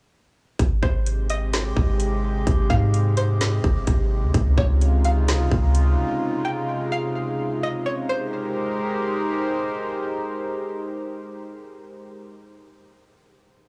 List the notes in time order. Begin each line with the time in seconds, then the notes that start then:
0.59 G#1 C3 G#3 G4 C5, kick, closed hi-hat
0.83 G#1 C5, kick
1.06 closed hi-hat
1.30 D#5, closed hi-hat
1.53 snare, closed hi-hat
1.77 G#1, kick
2.00 closed hi-hat
2.47 G#1, kick, closed hi-hat
2.70 G#2 F5, kick
2.94 closed hi-hat
3.17 C5, closed hi-hat
3.41 snare, closed hi-hat
3.64 G1, kick
3.87 G#1, kick, closed hi-hat
4.23 D#2
4.34 C#2 C#3 G#3 D#4 F4, kick, closed hi-hat
4.58 C#2 C#5, kick
4.81 closed hi-hat
5.05 F5, closed hi-hat
5.28 snare, closed hi-hat
5.52 C#2, kick
5.75 closed hi-hat
6.45 G5
6.92 F5
7.63 D#5
7.86 C#5
8.09 G#3 D#4 G4 A#4 C5